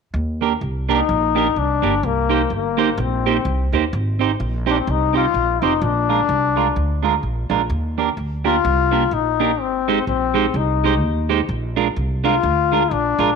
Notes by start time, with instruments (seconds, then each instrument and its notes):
0.14 upright bass D#2
0.41 clean electric guitar A#3 D4 G4 A#4
0.61 upright bass C2
0.89 clean electric guitar A#3 D4 G4 A#4, trombone D#4
1.09 upright bass A#1
1.35 clean electric guitar A#3 D4 G4 A#4
1.56 upright bass C2, trombone D4
1.82 upright bass G1, clean electric guitar A#3 D4 G4 A#4
2.03 upright bass C2, trombone A#3
2.29 clean electric guitar A#3 D#4 G4 C5
2.50 upright bass G1
2.55 trombone A#3
2.77 clean electric guitar A#3 D#4 G4 C5
2.98 upright bass A#1, muted clean electric guitar stroke
3.02 trombone C4
3.26 clean electric guitar A#3 D#4 G4 C5
3.45 upright bass C2
3.72 upright bass D#2, clean electric guitar A#3 D#4 G4 C5
3.93 upright bass G#1
4.19 clean electric guitar C4 D#4 G4 C5
4.40 upright bass A#1
4.66 clean electric guitar C4 D#4 G4 C5, trombone D4
4.79 trombone C4
4.86 upright bass C2, trombone D#4, muted clean electric guitar stroke
5.13 clean electric guitar C4 D#4 G4 C5, trombone F4
5.34 upright bass A#1
5.62 upright bass F1, clean electric guitar C4 D#4 G4 C5, trombone D#4
5.82 upright bass A#1, trombone D4
6.09 clean electric guitar G#3 D4 F4 A#4
6.29 upright bass C2
6.56 clean electric guitar G#3 D4 F4 A#4
6.76 upright bass D2, muted clean electric guitar stroke
7.03 clean electric guitar G#3 D4 F4 A#4
7.23 upright bass A#1
7.50 upright bass A#1, clean electric guitar G#3 D4 F4 A#4
7.70 upright bass D#2
7.98 clean electric guitar A#3 D4 G4 A#4
8.17 upright bass D2
8.44 clean electric guitar A#3 D4 G4 A#4, trombone F4
8.64 upright bass C2, muted clean electric guitar stroke
8.91 clean electric guitar A#3 D4 G4 A#4
9.11 upright bass A#1, trombone D#4
9.40 clean electric guitar A#3 D4 G4 A#4
9.60 upright bass G#1, trombone C4
9.88 clean electric guitar G#3 D#4 G4 C5
10.07 upright bass A#1, trombone C4
10.34 clean electric guitar G#3 D#4 G4 C5
10.54 upright bass C2, trombone D#4, muted clean electric guitar stroke
10.84 clean electric guitar G#3 D#4 G4 C5
11.01 upright bass D#2
11.29 clean electric guitar G#3 D#4 G4 C5
11.49 upright bass A#1
11.76 clean electric guitar G#3 D4 F4 A#4
11.96 upright bass C2
12.24 clean electric guitar G#3 D4 F4 A#4, trombone F4
12.43 upright bass D2, muted clean electric guitar stroke
12.72 clean electric guitar G#3 D4 F4 A#4
12.91 upright bass A#1, trombone D4
13.19 upright bass A#1, clean electric guitar G#3 D4 F4 A#4